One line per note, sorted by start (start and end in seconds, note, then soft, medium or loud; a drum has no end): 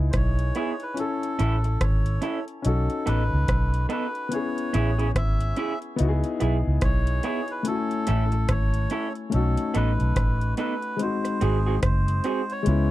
0.00 0.12 C#2 medium
0.00 0.92 D#4 medium
0.00 0.93 E4 medium
0.00 0.94 G#4 medium
0.00 0.95 B4 medium
0.10 0.15 C5 medium
0.10 kick loud
0.10 cross-stick medium
0.10 closed hi-hat medium
0.14 0.51 B1 medium
0.14 0.84 C#5 medium
0.39 closed hi-hat soft
0.55 0.71 B3 medium
0.55 0.72 E4 medium
0.55 0.72 G#4 medium
0.55 closed hi-hat medium
0.80 0.99 B4 medium
0.80 closed hi-hat soft
0.94 2.59 C#4 medium
0.94 2.60 E4 medium
0.94 closed hi-hat medium
0.98 1.84 A4 medium
0.98 2.63 A4 medium
0.98 2.62 G#5 medium
1.23 closed hi-hat soft
1.39 1.76 A1 medium
1.39 1.55 C#4 medium
1.39 1.55 E4 loud
1.39 1.56 A4 medium
1.39 closed hi-hat medium
1.64 muted clean electric guitar stroke soft
1.64 closed hi-hat soft
1.81 2.18 G#1 medium
1.81 2.45 C#5 medium
1.81 kick loud
1.81 cross-stick loud
1.81 closed hi-hat medium
2.06 closed hi-hat medium
2.22 2.38 C#4 medium
2.22 2.38 E4 medium
2.22 2.39 A4 medium
2.22 closed hi-hat medium
2.48 closed hi-hat soft
2.62 2.87 B1 medium
2.62 4.27 C#4 medium
2.62 4.28 D#4 medium
2.62 4.29 F#4 medium
2.62 3.08 A4 medium
2.62 closed hi-hat medium
2.68 4.30 A4 medium
2.90 closed hi-hat soft
3.06 3.29 A1 medium
3.06 3.22 B3 medium
3.06 3.22 D#4 medium
3.06 3.23 A4 medium
3.06 3.87 B4 medium
3.06 closed hi-hat medium
3.33 3.47 C#2 medium
3.48 3.85 B1 medium
3.48 kick loud
3.48 cross-stick loud
3.48 closed hi-hat medium
3.74 closed hi-hat soft
3.89 4.05 B3 medium
3.89 4.06 D#4 medium
3.89 4.06 A4 medium
3.89 4.34 B4 medium
3.89 closed hi-hat medium
4.15 closed hi-hat soft
4.29 5.94 B3 medium
4.29 5.95 C#4 soft
4.29 5.12 C#5 medium
4.29 closed hi-hat medium
4.33 5.96 E4 soft
4.33 5.97 G#4 medium
4.58 closed hi-hat soft
4.73 5.11 A1 medium
4.73 4.89 C#4 medium
4.73 4.90 E4 loud
4.73 4.90 G#4 medium
4.73 closed hi-hat medium
4.98 5.07 C#4 soft
4.98 5.07 E4 soft
4.98 5.07 G#4 medium
4.98 closed hi-hat soft
5.15 5.52 G#1 medium
5.15 5.79 E5 medium
5.15 kick loud
5.15 cross-stick loud
5.15 closed hi-hat medium
5.41 closed hi-hat medium
5.56 5.73 C#4 medium
5.56 5.73 E4 medium
5.56 5.73 G#4 medium
5.56 closed hi-hat medium
5.82 closed hi-hat soft
5.96 7.61 B3 medium
5.96 7.62 D#4 medium
5.96 7.63 E4 medium
5.96 closed hi-hat medium
6.00 6.22 C#2 medium
6.00 6.08 F#4 medium
6.09 7.67 G#4 medium
6.24 closed hi-hat soft
6.40 6.63 B1 medium
6.40 6.56 B3 medium
6.40 6.56 E4 medium
6.40 6.57 G#4 medium
6.40 closed hi-hat medium
6.67 6.81 C#2 medium
6.81 7.19 B1 medium
6.81 7.52 C#5 loud
6.81 kick loud
6.81 cross-stick loud
6.81 closed hi-hat medium
7.07 closed hi-hat soft
7.23 7.40 B3 medium
7.23 7.40 E4 medium
7.23 7.40 G#4 medium
7.23 closed hi-hat medium
7.48 7.67 B4 medium
7.48 closed hi-hat soft
7.63 9.28 A3 medium
7.63 9.29 C#4 medium
7.63 closed hi-hat medium
7.67 9.30 E4 medium
7.67 7.75 F#4 medium
7.67 8.52 A4 medium
7.75 9.34 G#5 medium
7.91 closed hi-hat soft
8.07 8.45 A1 loud
8.07 8.23 C#4 medium
8.07 8.24 E4 loud
8.07 8.24 A4 loud
8.07 closed hi-hat medium
8.32 muted clean electric guitar stroke medium
8.32 closed hi-hat soft
8.49 8.86 G#1 medium
8.49 9.13 C#5 medium
8.49 kick loud
8.49 cross-stick loud
8.49 closed hi-hat medium
8.74 closed hi-hat medium
8.90 9.07 C#4 medium
8.90 9.07 E4 medium
8.90 9.07 A4 medium
8.90 closed hi-hat medium
9.15 closed hi-hat soft
9.30 10.95 A3 medium
9.30 10.96 C#4 medium
9.30 10.97 D#4 medium
9.30 closed hi-hat medium
9.34 9.55 B1 loud
9.34 10.97 F#4 medium
9.34 9.76 A4 medium
9.57 closed hi-hat soft
9.74 9.97 A1 loud
9.74 9.90 B3 medium
9.74 9.90 D#4 medium
9.74 9.91 A4 medium
9.74 10.55 B4 medium
9.74 closed hi-hat medium
10.00 10.15 B1 medium
10.00 closed hi-hat soft
10.16 10.53 A1 medium
10.16 kick loud
10.16 cross-stick medium
10.16 closed hi-hat medium
10.41 closed hi-hat soft
10.57 10.73 B3 medium
10.57 10.74 D#4 medium
10.57 10.74 A4 medium
10.57 11.02 B4 medium
10.57 closed hi-hat medium
10.82 closed hi-hat soft
10.97 12.61 G#3 medium
10.97 12.62 C4 medium
10.97 closed hi-hat medium
11.01 12.63 D#4 medium
11.01 12.64 F#4 medium
11.01 11.80 C5 medium
11.25 cross-stick medium
11.25 closed hi-hat soft
11.41 11.78 G#1 medium
11.41 11.57 C4 medium
11.41 11.57 F#4 medium
11.41 11.57 G#4 medium
11.41 11.80 G#4 medium
11.41 closed hi-hat medium
11.66 11.75 C4 soft
11.66 11.75 F#4 medium
11.66 11.74 G#4 medium
11.83 12.19 F#1 medium
11.83 12.52 C5 medium
11.83 kick loud
11.83 cross-stick loud
11.83 closed hi-hat medium
12.08 closed hi-hat medium
12.24 12.40 C4 medium
12.24 12.41 F#4 medium
12.24 12.41 G#4 medium
12.24 cross-stick medium
12.24 closed hi-hat medium
12.50 12.91 C#5 medium
12.50 closed hi-hat soft
12.63 12.91 G#3 medium
12.63 12.91 B3 medium
12.63 12.91 C#4 medium
12.63 closed hi-hat medium
12.67 12.88 C#2 loud
12.67 12.91 E4 medium